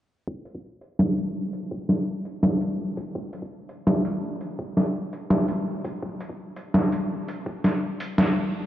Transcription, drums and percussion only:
0.28 kick loud
0.45 closed hi-hat medium
0.55 kick medium
0.81 closed hi-hat medium
0.99 snare loud
1.17 closed hi-hat medium
1.53 closed hi-hat medium
1.71 kick loud
1.89 snare medium
1.89 closed hi-hat medium
2.25 closed hi-hat medium
2.43 snare loud
2.61 closed hi-hat medium
2.97 kick loud
2.97 closed hi-hat medium
3.15 kick loud
3.33 closed hi-hat medium
3.42 kick medium
3.69 closed hi-hat medium
3.87 snare loud
4.05 closed hi-hat medium
4.41 closed hi-hat medium
4.59 kick loud
4.77 snare medium
4.77 closed hi-hat medium
5.13 closed hi-hat medium
5.30 snare loud
5.48 closed hi-hat medium
5.85 kick loud
5.85 closed hi-hat medium
6.03 kick loud
6.20 closed hi-hat medium
6.29 kick medium
6.56 closed hi-hat medium
6.74 snare loud
6.92 closed hi-hat medium
7.28 closed hi-hat medium
7.46 kick loud
7.64 snare medium
7.64 closed hi-hat medium
8.00 closed hi-hat medium
8.18 snare loud

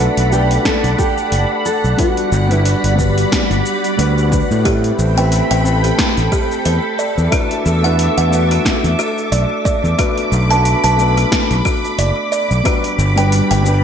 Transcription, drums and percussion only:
0.17 open hi-hat soft
0.32 shaker medium
0.51 open hi-hat soft
0.51 shaker soft
0.65 kick loud
0.65 snare medium
0.65 open hi-hat medium
0.65 shaker soft
0.84 open hi-hat soft
0.84 shaker soft
0.99 kick loud
0.99 shaker medium
1.18 shaker soft
1.32 open hi-hat medium
1.32 shaker soft
1.66 shaker medium
1.85 shaker soft
1.99 kick loud
1.99 open hi-hat medium
1.99 shaker soft
2.17 open hi-hat soft
2.32 shaker medium
2.51 open hi-hat soft
2.51 shaker soft
2.65 open hi-hat medium
2.65 shaker soft
2.84 open hi-hat soft
2.99 kick medium
2.99 shaker medium
3.18 open hi-hat soft
3.18 shaker soft
3.32 kick loud
3.32 snare medium
3.32 open hi-hat medium
3.32 shaker soft
3.51 open hi-hat soft
3.51 shaker soft
3.66 shaker medium
3.84 open hi-hat soft
3.84 shaker soft
3.99 open hi-hat medium
3.99 shaker soft
4.18 shaker soft
4.32 kick medium
4.32 shaker medium
4.51 shaker soft
4.65 kick loud
4.65 open hi-hat medium
4.65 shaker soft
4.84 open hi-hat soft
4.99 shaker medium
5.17 open hi-hat soft
5.17 shaker soft
5.32 open hi-hat medium
5.32 shaker soft
5.51 open hi-hat soft
5.66 shaker medium
5.84 open hi-hat soft
5.84 shaker soft
5.99 kick loud
5.99 snare medium
5.99 open hi-hat medium
5.99 shaker soft
6.17 open hi-hat soft
6.17 shaker soft
6.32 kick loud
6.32 shaker medium
6.51 shaker soft
6.65 open hi-hat medium
6.65 shaker soft
6.99 shaker medium
7.18 shaker soft
7.32 kick loud
7.32 open hi-hat medium
7.32 shaker soft
7.51 open hi-hat soft
7.66 shaker medium
7.84 open hi-hat soft
7.84 shaker soft
7.99 open hi-hat medium
7.99 shaker soft
8.18 open hi-hat soft
8.33 shaker medium
8.51 open hi-hat soft
8.51 shaker soft
8.65 kick loud
8.65 snare medium
8.65 open hi-hat medium
8.65 shaker soft
8.84 open hi-hat soft
8.84 shaker soft
8.99 shaker medium
9.18 shaker soft
9.32 open hi-hat medium
9.32 shaker soft
9.65 kick medium
9.65 shaker medium
9.85 shaker soft
9.99 kick loud
9.99 open hi-hat medium
9.99 shaker soft
10.18 open hi-hat soft
10.33 shaker medium
10.51 open hi-hat soft
10.51 shaker soft
10.65 open hi-hat medium
10.65 shaker soft
10.84 open hi-hat soft
10.99 shaker medium
11.18 open hi-hat soft
11.18 shaker soft
11.32 kick loud
11.32 snare medium
11.32 open hi-hat medium
11.32 shaker soft
11.51 open hi-hat soft
11.51 shaker soft
11.65 kick loud
11.65 shaker medium
11.85 shaker soft
11.99 open hi-hat medium
11.99 shaker soft
12.33 shaker medium
12.51 shaker soft
12.65 kick loud
12.65 open hi-hat medium
12.65 shaker soft
12.84 open hi-hat soft
12.99 shaker medium
13.17 open hi-hat soft
13.17 shaker soft
13.32 open hi-hat medium
13.32 shaker soft
13.51 open hi-hat soft
13.51 shaker soft
13.66 shaker medium

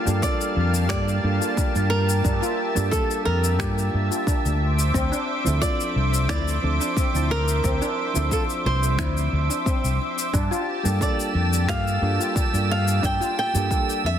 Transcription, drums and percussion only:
0.07 cabasa medium
0.22 kick loud
0.22 cabasa medium
0.41 cabasa soft
0.75 cabasa medium
0.90 finger snap medium
0.90 kick loud
0.90 cabasa medium
1.08 cabasa soft
1.42 cabasa medium
1.57 kick loud
1.57 cabasa medium
1.76 cabasa soft
2.10 cabasa medium
2.25 kick loud
2.25 cabasa medium
2.43 cabasa soft
2.77 cabasa medium
2.92 kick loud
2.92 cabasa medium
3.11 cabasa soft
3.44 cabasa medium
3.60 finger snap medium
3.60 kick loud
3.60 cabasa medium
3.78 cabasa soft
4.12 cabasa medium
4.27 kick loud
4.27 cabasa medium
4.46 cabasa soft
4.79 cabasa medium
4.94 kick loud
4.94 cabasa medium
5.13 cabasa soft
5.47 cabasa medium
5.62 kick loud
5.62 cabasa medium
5.81 cabasa soft
6.14 cabasa medium
6.29 finger snap medium
6.29 kick loud
6.29 cabasa medium
6.48 cabasa soft
6.81 cabasa medium
6.97 kick loud
6.97 cabasa medium
7.15 cabasa soft
7.49 cabasa medium
7.64 kick loud
7.64 cabasa medium
7.82 cabasa soft
8.16 cabasa medium
8.31 kick loud
8.31 cabasa medium
8.50 cabasa soft
8.83 cabasa medium
8.99 finger snap medium
8.99 kick medium
8.99 cabasa medium
9.17 cabasa soft
9.51 cabasa medium
9.66 kick loud
9.66 cabasa medium
9.85 cabasa soft
10.19 cabasa medium
10.34 kick loud
10.34 cabasa medium
10.53 cabasa soft
10.86 cabasa medium
11.01 kick medium
11.01 cabasa medium
11.20 cabasa soft
11.53 cabasa medium
11.68 finger snap medium
11.68 kick loud
11.68 cabasa medium
11.87 cabasa soft
12.21 cabasa medium
12.36 kick loud
12.36 cabasa medium
12.54 cabasa soft
12.88 cabasa medium
13.03 kick loud
13.03 cabasa medium
13.22 cabasa soft
13.55 cabasa medium
13.71 kick loud
13.71 cabasa medium
13.90 cabasa soft

